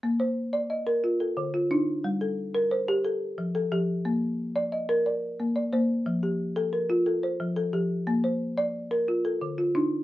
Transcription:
X:1
M:12/8
L:1/8
Q:3/8=119
K:Bb
V:1 name="Marimba"
z c3 e2 F A2 F E2- | E A3 c2 A3 A G2- | G z3 e2 d3 d c2- | c G3 B2 A c2 A G2- |
G c3 z2 F A2 F E2 |]
V:2 name="Marimba"
B,2 z d2 B z2 D,2 D2 | G,2 z B2 G z2 F,2 F,2 | B,2 z d2 B2 z B,2 B,2 | F,2 z A2 F2 z F,2 F,2 |
B,2 z d2 B z2 D,2 D2 |]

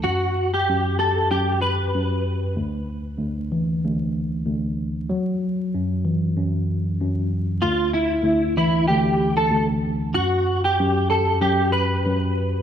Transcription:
X:1
M:4/4
L:1/16
Q:"Swing 16ths" 1/4=95
K:Gmix
V:1 name="Clean electric guitar"
^F3 G3 A2 G2 B6 | z16 | z16 | F2 E4 E2 G3 A2 z3 |
^F3 G3 A2 G2 B6 |]
V:2 name="Tine electric piano" clef=bass
^F,,4 F,,2 G2 F,,4 F,,4 | D,,4 D,,2 E,2 D,,4 D,,4 | ^F,4 ^F,,2 E,2 F,,4 F,,4 | D,,4 D,,2 E,2 D,,4 D,,4 |
^F,,4 F,,2 G2 F,,4 F,,4 |]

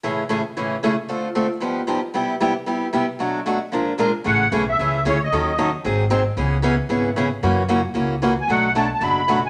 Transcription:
X:1
M:4/4
L:1/8
Q:"Swing" 1/4=227
K:A
V:1 name="Accordion"
z8 | z8 | z8 | z8 |
f2 z e3 c ^d- | ^d3 z4 z | z8 | z6 z g |
f2 a a b3 g |]
V:2 name="Steel-string acoustic guitar"
[A,,C,E,A,CG] z [A,,C,E,A,CG] z [A,,C,E,A,CG] z [A,,C,E,A,CG] z | [D,A,=C=FA] z [D,A,CFA] z [=G,,=F,B,^D=G] z [G,,F,B,DG] z | [=C,=G,B,E=G] z [C,G,B,EG] z [C,G,B,EG] z [C,G,B,EG] z | [B,,F,A,DF] z [B,,F,A,DF] z [_B,,=F,_A,D=F_B] z [B,,F,A,DFB] z |
[C,E,A,CG] z [C,E,A,CG] z [C,E,A,CG] z [C,E,A,CG] z | [^D,F,C^DA] z [D,F,CDA] z [D,F,^B,DG] z [D,F,B,DG] z | [C,E,B,CG] z [C,E,B,CG] z [C,E,B,CG] z [C,E,B,CG] z | [C,E,^A,CF] z [C,E,A,CF] z [C,E,A,CF] z [C,E,A,CF] z |
[B,,F,A,DF] z [B,,F,A,DF] z [B,,F,A,DF] z [B,,F,A,DF] z |]
V:3 name="Upright bass" clef=bass
z8 | z8 | z8 | z8 |
A,,,2 B,,,2 C,,2 D,,2 | ^D,,4 G,,,4 | C,,4 G,,,4 | F,,4 C,,4 |
B,,,4 F,,,4 |]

